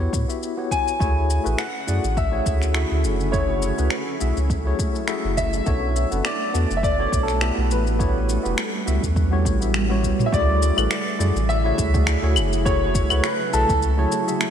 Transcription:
0.00 tine electric piano B3 E4 F#4 G4 C#5
0.13 sub bass A2, kick, shaker
0.28 tine electric piano B3 E4 F#4 G4 E5, shaker
0.43 shaker
0.57 tine electric piano B3 E4 F#4 G4 C#5
0.71 grand piano G#5, kick, shaker
0.88 shaker
0.99 sub bass D2, ambient pad D3 C#4 E4 F#4 G#4, tine electric piano A3 E4 F#4 G#4 C#5, kick, shaker
1.30 shaker
1.44 sub bass A1, tine electric piano A3 E4 F#4 G#4 B4, shaker
1.58 grand piano F#5, finger snap, shaker
1.87 sub bass F#2, tine electric piano A3 E4 F#4 G#4 D5, shaker
2.04 sub bass A1, shaker
2.17 grand piano E5, kick, shaker
2.31 tine electric piano A3 E4 F#4 G#4 C#5
2.46 sub bass D2, kick, shaker
2.62 finger snap, shaker
2.73 tine electric piano A3 E4 F#4 G#4 E5, finger snap, shaker
2.91 sub bass D2
3.04 sub bass F#1, ambient pad F#3 A3, shaker
3.20 shaker
3.31 tine electric piano A3 E4 F#4 G#4 C#5, grand piano C#5, kick, shaker
3.62 shaker
3.77 sub bass C#2, tine electric piano A3 E4 F#4 G#4 B4, shaker
3.90 finger snap, shaker
4.20 sub bass B1, tine electric piano A3 E4 F#4 G#4 E5, shaker
4.37 sub bass C#2, shaker
4.50 kick, shaker
4.65 tine electric piano A3 E4 F#4 G#4 C#5
4.79 kick, shaker
4.95 shaker
5.07 tine electric piano A3 E4 F#4 G#4 E5, finger snap, shaker
5.24 sub bass F#1
5.37 grand piano E5, kick, shaker
5.53 shaker
5.66 sub bass B1, ambient pad A3 B3 D4, tine electric piano B3 D4 F#4 A4 C#5, kick, shaker
5.96 shaker
6.11 sub bass F#1, tine electric piano B3 D4 F#4 A4 B4, shaker
6.25 grand piano D5, finger snap, shaker
6.53 sub bass E2, tine electric piano B3 D4 F#4 A4 D5, shaker
6.70 sub bass F#1, shaker
6.77 grand piano E5
6.83 grand piano D5, kick, shaker
6.98 tine electric piano B3 D4 F#4 A4 C#5
7.12 sub bass B1, kick, shaker
7.23 grand piano A4
7.28 finger snap, shaker
7.41 tine electric piano B3 E4 F#4 G4 E5, finger snap, shaker
7.57 sub bass B1
7.70 sub bass A1, ambient pad G3 C#4, grand piano B4, shaker
7.87 shaker
7.99 tine electric piano B3 E4 F#4 G4 C#5, kick, shaker
8.29 shaker
8.43 sub bass E1, tine electric piano B3 E4 F#4 G4 B4, shaker
8.58 finger snap, shaker
8.86 sub bass C#2, tine electric piano B3 E4 F#4 G4 E5, shaker
9.03 sub bass E2, kick, shaker
9.16 kick, shaker
9.31 tine electric piano B3 E4 F#4 G4 C#5
9.45 sub bass A1, kick, shaker
9.60 tine electric piano B3 E4 F#4 G4 E5, shaker
9.74 finger snap, high tom, shaker
9.89 tine electric piano B3 E4 F#4 G4 C#5, high tom
10.03 kick, shaker
10.19 mid tom, shaker
10.26 grand piano E5
10.32 sub bass D2, ambient pad C#3 D3 E4 F#4 G#4, tine electric piano A3 E4 F#4 G#4 D5, grand piano D5, kick, shaker
10.62 shaker
10.76 sub bass A1, tine electric piano A3 E4 F#4 G#4 B4, claves, shaker
10.91 finger snap, shaker
11.19 sub bass F#2, tine electric piano A3 E4 F#4 G#4 D5, shaker
11.35 sub bass A1, shaker
11.49 grand piano E5, shaker
11.64 tine electric piano A3 E4 F#4 G#4 C#5
11.78 sub bass D2, kick, shaker
11.93 tine electric piano A3 E4 F#4 G#4 D5, kick, shaker
12.07 finger snap, shaker
12.22 sub bass D2, tine electric piano A3 E4 F#4 G#4 C#5
12.36 sub bass F#1, ambient pad F#3 A3, claves, shaker
12.53 shaker
12.65 tine electric piano A3 E4 F#4 G#4 C#5, grand piano C#5, kick, shaker
12.95 kick, shaker
13.09 sub bass C#2, tine electric piano A3 E4 F#4 G#4 B4, claves, shaker
13.24 grand piano B4, finger snap, shaker
13.53 sub bass B1, tine electric piano A3 E4 F#4 G#4 E5, grand piano A4, shaker
13.69 sub bass C#2, kick, shaker
13.82 shaker
13.97 tine electric piano A3 E4 F#4 G#4 C#5
14.12 shaker
14.26 tine electric piano A3 E4 F#4 G#4 E5, shaker
14.41 finger snap, shaker

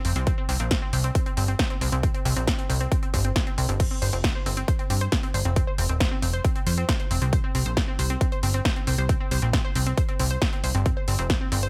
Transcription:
0.05 analog synth bass F1, synth pluck C4, open hi-hat
0.16 analog synth bass C2, synth pluck C4, closed hi-hat
0.27 synth pluck C4, kick, closed hi-hat
0.38 synth pluck C4
0.49 analog synth bass C2, synth pluck C4, open hi-hat
0.60 analog synth bass A#1, synth pluck C4, closed hi-hat
0.71 synth pluck C4, kick, snare, closed hi-hat
0.82 synth pluck C4
0.93 analog synth bass C2, synth pluck C4, open hi-hat
1.04 synth pluck C4, closed hi-hat
1.15 synth pluck C4, kick, closed hi-hat
1.26 synth pluck C4, closed hi-hat
1.37 analog synth bass G1, synth pluck C4, open hi-hat
1.48 synth pluck C4, closed hi-hat
1.59 synth pluck C4, kick, snare, closed hi-hat
1.70 synth pluck C4, closed hi-hat
1.81 analog synth bass C2, synth pluck C4, open hi-hat
1.92 analog synth bass C2, synth pluck C4, closed hi-hat
2.03 synth pluck C4, kick, closed hi-hat
2.14 synth pluck C4, closed hi-hat
2.25 analog synth bass C2, synth pluck C4, open hi-hat
2.36 analog synth bass A#1, synth pluck C4, closed hi-hat
2.47 synth pluck C4, kick, snare, closed hi-hat
2.59 synth pluck C4, closed hi-hat
2.69 analog synth bass C2, synth pluck C4, open hi-hat
2.81 synth pluck C4, closed hi-hat
2.92 synth pluck C4, kick, closed hi-hat
3.03 synth pluck C4, closed hi-hat
3.14 analog synth bass G1, synth pluck C4, kick, open hi-hat
3.25 synth pluck C4, closed hi-hat
3.36 synth pluck C4, kick, snare, closed hi-hat
3.47 synth pluck C4, closed hi-hat
3.58 analog synth bass C2, synth pluck C4, open hi-hat
3.69 analog synth bass G1, synth pluck C4, closed hi-hat
3.80 synth pluck C4, kick, closed hi-hat, crash
3.91 synth pluck C4
4.02 analog synth bass G1, synth pluck C5, open hi-hat
4.13 analog synth bass F1, synth pluck C4, closed hi-hat
4.24 synth pluck C4, kick, snare, closed hi-hat
4.35 synth pluck C5
4.46 analog synth bass G1, synth pluck C4, open hi-hat
4.57 synth pluck C4, closed hi-hat
4.68 synth pluck C5, kick, closed hi-hat
4.79 synth pluck C4, closed hi-hat
4.90 analog synth bass G2, synth pluck C4, open hi-hat
5.01 synth pluck C5, closed hi-hat
5.12 synth pluck C4, kick, snare, closed hi-hat
5.23 synth pluck C4, closed hi-hat
5.34 analog synth bass G1, synth pluck C5, open hi-hat
5.45 analog synth bass F1, synth pluck C4, closed hi-hat
5.56 synth pluck C4, kick, closed hi-hat
5.67 synth pluck C5
5.78 analog synth bass F1, synth pluck C4, open hi-hat
5.89 analog synth bass D#1, synth pluck C4, closed hi-hat
6.00 synth pluck C5, kick, snare, closed hi-hat
6.11 synth pluck C4
6.22 analog synth bass F1, synth pluck C4, open hi-hat
6.33 synth pluck C5, closed hi-hat
6.45 synth pluck C4, kick, closed hi-hat
6.56 synth pluck C4, closed hi-hat
6.66 analog synth bass F2, synth pluck C5, open hi-hat
6.78 synth pluck C4, closed hi-hat
6.89 synth pluck C4, kick, snare, closed hi-hat
7.00 synth pluck C5, closed hi-hat
7.11 analog synth bass F1, synth pluck C4, open hi-hat
7.22 analog synth bass C2, synth pluck C4, closed hi-hat
7.33 synth pluck C5, kick, closed hi-hat
7.44 synth pluck C4
7.55 analog synth bass C2, synth pluck C4, open hi-hat
7.66 analog synth bass A#1, synth pluck C5, closed hi-hat
7.77 synth pluck C4, kick, snare, closed hi-hat
7.88 synth pluck C4
7.99 analog synth bass C2, synth pluck C5, open hi-hat
8.10 synth pluck C4, closed hi-hat
8.21 synth pluck C4, kick, closed hi-hat
8.32 synth pluck C5, closed hi-hat
8.43 analog synth bass G1, synth pluck C4, open hi-hat
8.54 synth pluck C4, closed hi-hat
8.65 synth pluck C5, kick, snare, closed hi-hat
8.76 synth pluck C4, closed hi-hat
8.87 analog synth bass C2, synth pluck C4, open hi-hat
8.98 analog synth bass C2, synth pluck C5, closed hi-hat
9.09 synth pluck C4, kick, closed hi-hat
9.20 synth pluck C4
9.31 analog synth bass C2, synth pluck C5, open hi-hat
9.42 analog synth bass A#1, synth pluck C4, closed hi-hat
9.53 synth pluck C4, kick, snare, closed hi-hat
9.65 synth pluck C5
9.75 analog synth bass C2, synth pluck C4, open hi-hat
9.86 synth pluck C4, closed hi-hat
9.98 synth pluck C5, kick, closed hi-hat
10.09 synth pluck C4, closed hi-hat
10.20 analog synth bass C2, synth pluck C4, open hi-hat
10.31 synth pluck C5, closed hi-hat
10.42 synth pluck C4, kick, snare, closed hi-hat
10.53 synth pluck C4, closed hi-hat
10.64 analog synth bass C2, synth pluck C5, open hi-hat
10.75 analog synth bass G1, synth pluck C4, closed hi-hat
10.86 synth pluck C4, kick, closed hi-hat
10.97 synth pluck C5
11.08 analog synth bass G1, synth pluck C4, open hi-hat
11.19 analog synth bass F1, synth pluck C4, closed hi-hat
11.30 synth pluck C5, kick, snare, closed hi-hat
11.41 synth pluck C4
11.52 analog synth bass G1, synth pluck C4, open hi-hat
11.63 synth pluck C5, closed hi-hat

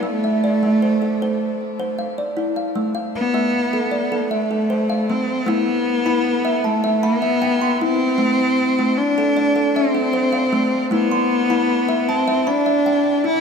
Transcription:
Already playing: kalimba F5
0.00 cello A3, kalimba A3
0.24 kalimba E5
0.44 kalimba D5
0.63 kalimba A3
0.82 kalimba C5
1.02 kalimba A4
1.22 kalimba C5
1.80 kalimba C5
1.99 kalimba F5
2.18 kalimba D5
2.37 kalimba E4
2.56 kalimba F5
2.75 kalimba A3
2.95 kalimba F5
3.15 cello B3
3.34 kalimba A3 E5
3.73 kalimba A4
3.91 kalimba D5
4.12 kalimba A4
4.31 cello A3, kalimba E5
4.51 kalimba A4
4.70 kalimba C5
4.90 kalimba F5
5.10 kalimba A3, cello C4
5.46 kalimba A3 E4, cello B3
6.06 kalimba E4 B5
6.45 kalimba E5
6.64 cello A3, kalimba A5
6.84 kalimba E5
7.03 cello B3, kalimba B5
7.22 kalimba E5
7.42 kalimba G5
7.61 kalimba C6
7.81 cello C4, kalimba E4
8.18 kalimba A3
8.79 kalimba A3
8.98 cello D4
9.18 kalimba A4
9.37 kalimba D5
9.56 kalimba A4
9.75 cello C4, kalimba E5
9.94 kalimba A4
10.13 kalimba C5
10.33 kalimba F5
10.53 kalimba A3
10.91 kalimba A3 E4, cello B3
11.11 kalimba C6
11.50 kalimba E4 B5
11.89 kalimba E5
12.09 cello C4, kalimba A5
12.28 kalimba E5
12.47 cello D4, kalimba B5
12.66 kalimba E5
12.86 kalimba G5
13.24 kalimba E4, cello E4

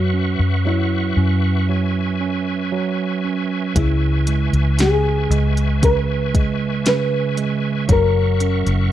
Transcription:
Already playing: fingered electric bass F#2, tine electric piano F#3, nylon-string guitar F#4, tonewheel organ B4 E5 F#5 C#6
0.14 tine electric piano C#4
0.39 fingered electric bass F#2
0.65 tine electric piano F#3, nylon-string guitar E4
1.17 fingered electric bass F#2, tine electric piano C#4
1.69 tine electric piano F#3, tonewheel organ G#5
2.20 tine electric piano C#4
2.72 tine electric piano F#3
3.24 tine electric piano C#4
3.75 fingered electric bass C#2, tine electric piano C#3, nylon-string guitar E4, kick, closed hi-hat
4.27 tine electric piano G#3, closed hi-hat
4.53 fingered electric bass C#2, closed hi-hat
4.79 tine electric piano C#3, nylon-string guitar G#4, snare, closed hi-hat
5.30 fingered electric bass C#2, tine electric piano G#3, closed hi-hat
5.57 closed hi-hat
5.82 tine electric piano C#3, nylon-string guitar B4, kick, closed hi-hat
6.34 tine electric piano G#3, kick, closed hi-hat
6.86 tine electric piano C#3, nylon-string guitar B4, snare, closed hi-hat
7.37 tine electric piano G#3, closed hi-hat
7.88 fingered electric bass F#1, tine electric piano F#3, tonewheel organ A#4 F#5, nylon-string guitar A#4, kick, closed hi-hat
8.40 tine electric piano C#4, closed hi-hat
8.66 fingered electric bass F#1, closed hi-hat

